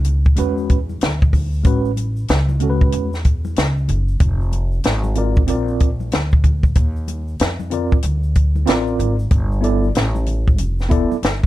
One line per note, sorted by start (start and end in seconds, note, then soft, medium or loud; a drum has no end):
0.00 0.35 C#2 medium
0.04 closed hi-hat medium
0.04 low conga medium
0.04 shaker soft
0.25 kick medium
0.25 shaker soft
0.36 0.98 E2 loud
0.36 0.77 G#3 medium
0.36 0.77 C#4 medium
0.36 0.78 F#4 medium
0.36 0.78 B4 medium
0.36 closed hi-hat medium
0.36 high conga soft
0.36 shaker medium
0.58 shaker soft
0.69 kick medium
0.69 closed hi-hat medium
0.69 shaker soft
0.89 high conga medium
0.89 shaker soft
1.01 1.62 D2 medium
1.01 snare loud
1.01 closed hi-hat medium
1.01 shaker medium
1.21 kick medium
1.21 shaker soft
1.33 kick medium
1.33 open hi-hat soft
1.33 high conga medium
1.33 low conga medium
1.33 shaker soft
1.53 shaker soft
1.63 2.26 A1 loud
1.63 1.89 G#3 medium
1.63 1.90 C#4 medium
1.63 1.90 F#4 medium
1.63 1.91 B4 medium
1.63 kick loud
1.63 closed hi-hat medium
1.63 shaker medium
1.85 shaker soft
1.97 closed hi-hat medium
1.97 high conga soft
1.97 shaker soft
2.17 shaker soft
2.28 2.90 C#2 medium
2.28 snare loud
2.28 closed hi-hat medium
2.28 shaker medium
2.49 high conga medium
2.49 shaker soft
2.60 3.09 G#3 medium
2.60 3.09 C#4 medium
2.60 3.10 F#4 medium
2.60 2.70 A4 medium
2.60 closed hi-hat medium
2.60 low conga medium
2.60 shaker soft
2.70 3.13 B4 medium
2.80 kick medium
2.80 shaker soft
2.92 3.54 E2 medium
2.92 closed hi-hat loud
2.92 high conga soft
2.92 shaker medium
3.13 snare soft
3.13 shaker soft
3.25 kick medium
3.25 closed hi-hat medium
3.25 shaker soft
3.45 high conga medium
3.45 shaker soft
3.56 3.87 C#2 medium
3.56 snare loud
3.56 closed hi-hat medium
3.56 shaker medium
3.77 shaker soft
3.88 4.19 F#1 medium
3.88 closed hi-hat medium
3.88 high conga medium
3.88 low conga medium
3.88 shaker soft
4.08 shaker soft
4.20 4.81 F1 loud
4.20 kick loud
4.20 closed hi-hat medium
4.20 shaker medium
4.41 shaker soft
4.52 closed hi-hat medium
4.52 high conga soft
4.52 shaker soft
4.71 shaker soft
4.84 5.45 G#1 medium
4.84 snare loud
4.84 closed hi-hat medium
4.84 shaker medium
5.03 high conga medium
5.03 shaker medium
5.15 5.41 C4 medium
5.15 5.41 F4 medium
5.15 5.42 A#4 medium
5.15 5.42 D5 medium
5.15 closed hi-hat medium
5.15 low conga medium
5.15 shaker soft
5.36 kick medium
5.36 shaker soft
5.47 6.09 A#1 medium
5.47 5.88 C4 medium
5.47 5.88 F4 medium
5.47 5.89 A#4 medium
5.47 5.89 D5 medium
5.47 closed hi-hat medium
5.47 high conga soft
5.47 shaker medium
5.68 shaker soft
5.80 kick medium
5.80 closed hi-hat medium
5.80 shaker soft
6.00 high conga medium
6.00 shaker soft
6.11 6.73 D2 medium
6.11 snare loud
6.11 closed hi-hat medium
6.11 shaker medium
6.31 kick medium
6.31 shaker soft
6.44 kick medium
6.44 closed hi-hat medium
6.44 high conga medium
6.44 low conga medium
6.44 shaker soft
6.63 kick medium
6.63 shaker soft
6.75 7.37 D#2 loud
6.75 kick loud
6.75 closed hi-hat medium
6.75 shaker medium
6.96 shaker soft
7.08 closed hi-hat medium
7.08 high conga soft
7.08 shaker soft
7.28 shaker soft
7.39 8.01 F2 medium
7.39 snare loud
7.39 closed hi-hat medium
7.39 shaker medium
7.59 high conga medium
7.59 shaker soft
7.70 7.96 C4 medium
7.70 7.96 F4 medium
7.70 7.97 A#4 medium
7.70 7.97 D5 medium
7.70 closed hi-hat medium
7.70 low conga medium
7.70 shaker soft
7.91 kick medium
7.91 shaker soft
8.03 8.64 D2 loud
8.03 closed hi-hat loud
8.03 high conga soft
8.03 shaker medium
8.23 shaker soft
8.35 kick medium
8.35 closed hi-hat medium
8.35 shaker soft
8.56 high conga medium
8.56 shaker soft
8.66 8.98 A1 medium
8.66 9.14 C4 medium
8.66 9.15 F4 medium
8.66 9.15 A#4 medium
8.66 9.16 D5 medium
8.66 snare loud
8.66 closed hi-hat medium
8.66 shaker medium
8.87 shaker soft
8.99 9.30 G#1 medium
8.99 closed hi-hat medium
8.99 high conga medium
8.99 low conga medium
8.99 shaker soft
9.19 shaker soft
9.31 9.92 G1 medium
9.31 kick loud
9.31 closed hi-hat medium
9.31 shaker medium
9.52 shaker soft
9.61 9.87 B3 medium
9.61 9.87 E4 medium
9.61 9.88 A4 medium
9.61 9.89 D5 medium
9.61 closed hi-hat medium
9.61 high conga soft
9.61 shaker soft
9.83 shaker soft
9.95 10.60 A1 medium
9.95 snare loud
9.95 closed hi-hat medium
9.95 shaker medium
10.15 high conga medium
10.15 shaker soft
10.26 closed hi-hat medium
10.26 low conga medium
10.26 shaker soft
10.47 kick medium
10.47 shaker soft
10.58 11.09 F1 medium
10.58 closed hi-hat medium
10.58 high conga soft
10.58 shaker medium
10.79 snare soft
10.79 shaker soft
10.89 11.15 B3 medium
10.89 11.15 E4 medium
10.89 11.16 A4 medium
10.89 11.16 D5 medium
10.89 kick medium
10.89 closed hi-hat medium
10.89 shaker soft
11.11 muted upright bass stroke soft
11.11 high conga medium
11.11 shaker soft
11.23 11.47 G1 medium
11.23 snare loud
11.23 closed hi-hat medium
11.23 shaker medium
11.43 kick medium
11.43 shaker soft